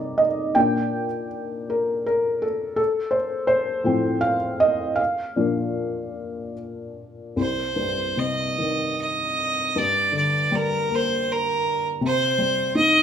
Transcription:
0.00 0.57 C3 soft
0.00 0.58 G3 soft
0.00 0.57 D#4 medium
0.00 0.19 D5 medium
0.00 0.18 D#5 medium
0.18 0.26 D#5 medium
0.55 1.05 A#2 soft
0.55 1.05 A#3 soft
0.55 1.05 D4 medium
0.55 1.26 G5 medium
1.70 2.04 A#4 medium
2.06 2.44 A#4 medium
2.42 2.75 A4 medium
2.76 3.14 A4 medium
3.11 3.46 C5 medium
3.47 4.19 C5 medium
3.84 4.35 A2 medium
3.84 4.35 F3 soft
3.84 4.36 C4 medium
4.21 4.61 F5 medium
4.60 4.99 D#5 medium
4.96 6.51 F5 medium
5.36 6.53 A#2 soft
5.36 6.53 F3 soft
5.36 6.53 D4 medium
7.36 9.72 C2 soft
7.36 8.21 C5 medium
7.76 9.33 G2 soft
8.17 9.72 C3 soft
8.17 8.99 D#5 medium
8.58 9.73 D#3 soft
9.02 9.80 D#5 medium
9.76 11.99 G2 medium
9.76 10.16 D5 medium
10.12 11.61 D3 soft
10.17 10.57 D5 medium
10.52 11.99 G3 medium
10.56 10.96 A#4 medium
10.89 11.99 A#3 medium
10.95 11.34 C5 medium
11.32 11.87 A#4 medium
12.01 13.03 C3 medium
12.06 12.74 C5 medium
12.38 13.03 G3 soft
12.75 13.03 D#4 medium
12.75 13.03 D#5 medium

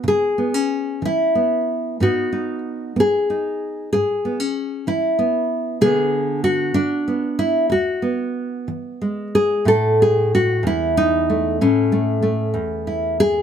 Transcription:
0.04 0.62 C#3 medium
0.08 1.03 G#4 medium
0.38 0.54 B3 soft
0.54 2.00 C#4 soft
1.02 1.60 E3 medium
1.02 2.01 E4 medium
1.35 2.00 B3 soft
2.00 2.58 G#2 medium
2.00 2.96 B3 soft
2.00 2.31 D#4 soft
2.00 2.98 F#4 medium
2.32 3.29 D#4 soft
2.96 3.54 B3 medium
2.96 3.91 G#4 medium
3.30 3.89 D#4 soft
3.93 4.50 G#2 medium
3.93 4.87 G#4 medium
4.25 4.40 B3 soft
4.40 5.82 C#4 soft
4.87 5.44 E3 medium
4.87 5.81 E4 medium
5.19 5.83 B3 soft
5.81 6.38 B2 medium
5.81 6.74 D3 soft
5.81 7.06 B3 soft
5.81 6.73 D4 soft
5.81 6.43 G#4 loud
6.44 7.38 F#4 medium
6.74 7.33 D3 medium
6.74 7.70 D4 medium
7.08 7.67 B3 soft
7.39 7.71 E4 medium
7.70 8.28 E2 medium
7.70 9.34 F#4 medium
8.02 9.66 B3 soft
8.68 9.27 E3 soft
9.02 9.63 G#3 soft
9.35 9.67 G#4 medium
9.65 10.63 A2 medium
9.65 10.00 A4 loud
10.02 10.33 G#4 medium
10.35 10.65 F#4 medium
10.63 11.59 E2 medium
10.63 11.61 E4 medium
10.97 11.60 D#4 medium
11.30 11.92 A3 soft
11.61 12.55 A2 medium
11.61 13.42 C#4 medium
11.92 12.22 A3 soft
12.22 13.42 A3 soft
12.54 13.42 E2 medium
12.87 13.20 E4 soft
13.20 13.42 G#4 loud

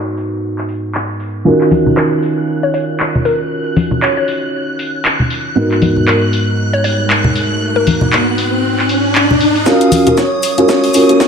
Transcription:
0.00 1.43 G#2 medium
0.00 1.43 B3 medium
0.00 1.43 D#4 medium
0.00 1.43 F#4 medium
0.00 1.44 A#4 medium
0.17 open hi-hat loud
0.58 clap soft
0.69 open hi-hat loud
0.95 clap loud
1.20 open hi-hat loud
1.45 5.53 D#3 medium
1.45 5.53 C#4 medium
1.45 5.53 F4 medium
1.45 5.54 F#4 medium
1.45 5.54 A#4 medium
1.45 9.67 F#6 medium
1.61 clap soft
1.71 open hi-hat loud
1.71 high conga medium
1.86 low conga medium
1.97 2.11 A#4 medium
1.97 clap loud
2.23 open hi-hat medium
2.63 2.70 C#5 medium
2.74 2.83 C#5 medium
2.74 open hi-hat loud
3.00 clap loud
3.15 low conga medium
3.25 3.39 A#4 medium
3.25 open hi-hat loud
3.76 open hi-hat medium
3.76 high conga medium
3.91 low conga medium
4.02 4.12 C#5 medium
4.02 clap loud
4.17 4.24 C#5 medium
4.28 open hi-hat medium
4.79 open hi-hat loud
5.05 clap loud
5.20 low conga medium
5.30 open hi-hat medium
5.55 9.63 G#2 medium
5.55 9.63 B3 medium
5.55 9.64 D#4 medium
5.55 9.64 F#4 medium
5.55 9.64 A#4 medium
5.55 riser medium
5.71 clap soft
5.82 open hi-hat medium
5.82 high conga medium
5.96 low conga medium
6.07 6.22 A#4 medium
6.07 clap loud
6.33 open hi-hat medium
6.73 6.80 C#5 medium
6.84 6.94 C#5 medium
6.84 open hi-hat medium
7.10 clap loud
7.24 low conga medium
7.36 open hi-hat medium
7.76 8.12 A#4 medium
7.87 open hi-hat medium
7.87 high conga medium
8.01 low conga medium
8.13 clap loud
8.38 open hi-hat medium
8.79 clap soft
8.89 open hi-hat medium
9.15 clap loud
9.31 low conga medium
9.41 open hi-hat medium
9.56 open hi-hat medium
9.66 10.03 C#4 medium
9.66 10.03 F4 medium
9.66 10.03 F#4 medium
9.66 10.03 A#4 medium
9.66 10.19 F5 loud
9.66 11.28 D#6 medium
9.66 kick loud
9.66 snare soft
9.66 riser medium
9.66 cabasa soft
9.81 closed hi-hat soft
9.81 cabasa soft
9.92 open hi-hat loud
9.92 high conga medium
9.92 cabasa medium
10.06 10.20 C#4 medium
10.06 10.20 F4 medium
10.06 10.20 F#4 medium
10.06 10.21 A#4 medium
10.06 closed hi-hat medium
10.06 low conga medium
10.06 cabasa soft
10.17 10.68 C#5 medium
10.17 kick loud
10.17 snare soft
10.17 cabasa soft
10.43 open hi-hat loud
10.43 cabasa medium
10.58 10.82 C#4 medium
10.58 10.82 F4 medium
10.58 10.82 F#4 medium
10.58 10.83 A#4 loud
10.58 closed hi-hat medium
10.58 cabasa soft
10.69 11.28 C#5 loud
10.69 kick loud
10.69 snare medium
10.69 cabasa soft
10.84 open hi-hat medium
10.94 11.07 C#4 medium
10.94 11.07 F4 medium
10.94 11.07 F#4 medium
10.94 11.07 A#4 medium
10.94 open hi-hat loud
10.94 cabasa medium
11.09 11.23 C#4 medium
11.09 11.23 F4 medium
11.09 11.23 F#4 medium
11.09 11.23 A#4 medium
11.09 closed hi-hat medium
11.09 cabasa soft
11.20 kick loud
11.20 snare medium
11.20 cabasa soft

